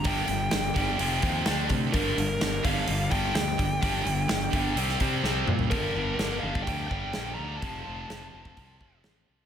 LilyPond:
<<
  \new Staff \with { instrumentName = "Lead electric guitar" } { \time 4/4 \key g \minor \tempo 4 = 127 g''2.~ g''8 r8 | bes'4. f''4 g''8 g''4~ | g''2. r4 | bes'4. f''8 g''8 g''4 bes''8 |
a''2. r4 | }
  \new Staff \with { instrumentName = "Distorted electric guitar" } { \clef bass \time 4/4 \key g \minor <g, d g>8 <g, d>8 <g, d>8 <g, d g>8 <f, c f>8 <f, c f>8 <d a d'>8 <d a>8 | <g, d g>8 <g, d>8 <g, d>8 <g, d g>8 <g, d>8 <g, d g>8 <g, d>8 <g, d>8 | <g, d g>8 <g, d>8 <g, d>8 <g, d g>8 <c g c'>8 <c g c'>8 <c g c'>8 <c g>8 | <g, d g>8 <g, d g>8 <g, d g>8 <g, d g>8 <g, d g>8 <g, d g>8 <g, d g>8 <g, d g>8 |
<f, c f>8 <f, c f>8 <f, c f>8 <f, c f>8 <f, c f>8 <f, c f>8 <f, c f>8 <f, c f>8 | }
  \new Staff \with { instrumentName = "Distorted electric guitar" } { \clef bass \time 4/4 \key g \minor <g, d g>8 <g, d>8 <g, d>8 <g, d g>8 <f, c f>8 <f, c f>8 <d a d'>8 <d a>8 | <g, d g>8 <g, d>8 <g, d>8 <g, d g>8 <g, d>8 <g, d g>8 <g, d>8 <g, d>8 | <g, d g>8 <g, d>8 <g, d>8 <g, d g>8 <c g c'>8 <c g c'>8 <c g c'>8 <c g>8 | <g, d g>8 <g, d g>8 <g, d g>8 <g, d g>8 <g, d g>8 <g, d g>8 <g, d g>8 <g, d g>8 |
<f, c f>8 <f, c f>8 <f, c f>8 <f, c f>8 <f, c f>8 <f, c f>8 <f, c f>8 <f, c f>8 | }
  \new Staff \with { instrumentName = "Overdriven electric guitar" } { \clef bass \time 4/4 \key g \minor <g, d g>2 <f, c f>4 <d a d'>4 | <g, d g>2 <g, d g>2 | <g, d g>2 <c g c'>4 <c g c'>4 | r1 |
r1 | }
  \new Staff \with { instrumentName = "Fingered electric bass" } { \clef bass \time 4/4 \key g \minor g,,8 g,,8 g,,8 g,,8 f,,8 ees,8 d,8 c8 | g,,8 g,,8 g,,8 g,,8 g,,8 g,,8 d,8 g,,8 | g,,8 g,,8 g,,8 g,,8 c,8 c8 c,8 bes,8 | g,,8 g,,8 g,,8 g,,8 d,8 g,,8 bes,,8 d,8 |
f,,8 f,,8 f,,8 f,,8 c,8 f,,8 a,,8 c,8 | }
  \new DrumStaff \with { instrumentName = "Drums" } \drummode { \time 4/4 <hho bd>8 hho8 <hho sn>8 <hho bd>8 hho8 <hho bd>8 <hho sn>8 <hho bd>8 | <hho bd>8 hho8 <hho sn>8 <hho bd>8 hho8 <hho bd>8 <hho sn>8 <hho bd>8 | <hho bd>8 hho8 <hho sn>8 <hho bd>8 hho16 sn16 <hho bd>8 sn8 toml16 tomfh16 | <hho bd>4 <hho sn>8. bd16 <hho bd>8 bd8 <hho sn>4 |
<hho bd>4 <hho sn>8. bd16 <hho bd>8 bd8 <hho sn>4 | }
>>